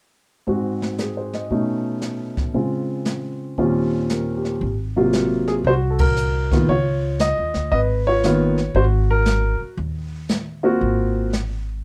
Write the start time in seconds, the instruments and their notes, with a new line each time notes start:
0.47 grand piano G#2 G#3 C4 F#4, brush sweep, kick
0.82 snare
0.98 grand piano G#4, snare, hi-hat pedal
1.17 grand piano C5
1.33 grand piano D#5, snare
1.50 grand piano B2 A3 C#4 D#4, brush sweep, kick
2.01 snare, hi-hat pedal
2.37 kick, snare
2.54 grand piano C#3 G#3 C4 F4, brush sweep, kick
3.05 snare, hi-hat pedal
3.58 grand piano D#2 A#2 G3 C4 C#4 F4, brush sweep, kick
4.09 grand piano A#4, snare, hi-hat pedal
4.37 grand piano G4
4.45 snare
4.61 upright bass G#1, brush sweep, kick
4.96 grand piano C3 F#3 A#3 F4
5.13 snare, hi-hat pedal
5.48 grand piano G#4, snare
5.64 upright bass C2, grand piano C5, brush sweep, kick
5.69 grand piano F#4
5.90 grand piano A4
5.99 grand piano A#4, kick, ride
6.17 hi-hat pedal
6.51 grand piano D#3 A#3 B3 F4, kick, snare
6.69 upright bass C#2, grand piano F4 C#5, brush sweep, kick
7.19 grand piano D#5, snare, hi-hat pedal
7.38 upright bass D#2
7.54 upright bass D2, snare
7.72 upright bass G#1, grand piano B4 D#5, brush sweep, kick
8.07 grand piano F4 C#5
8.23 grand piano D#3 A#3 B3 F4, snare, hi-hat pedal
8.58 snare
8.74 upright bass G#1, grand piano F#4 C5, brush sweep, kick
9.11 grand piano A#4
9.26 snare, hi-hat pedal
9.60 muted upright bass stroke
9.77 upright bass D#2, brush sweep, kick
10.29 snare, hi-hat pedal
10.63 grand piano A#3 C4 F4 F#4
10.81 upright bass G#1, brush sweep, kick
11.33 snare, hi-hat pedal